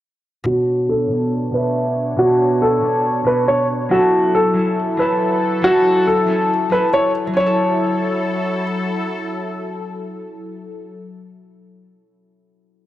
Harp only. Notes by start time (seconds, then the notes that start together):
0.44 B2 B3 D4
0.48 C#5
1.08 B2 B3 D4
1.13 C#5
1.52 B2 B3 D4
1.56 E5
2.16 B2 B3 D4
2.21 C#5
2.81 B2 B3 D4
2.86 C#5
3.24 B2 B3 D4
3.29 F#4
3.89 F#3 C#4 E4
3.94 A4
4.54 F#3 C#4 E4
4.58 A4
4.97 F#3 C#4 E4
5.02 A4
5.62 F#3 C#4 E4
5.67 A4
6.26 F#3 C#4 E4
6.31 A4
6.70 F#3 C#4 E4
6.74 A4
7.27 F#3
7.33 C#4
7.40 E4
7.46 A4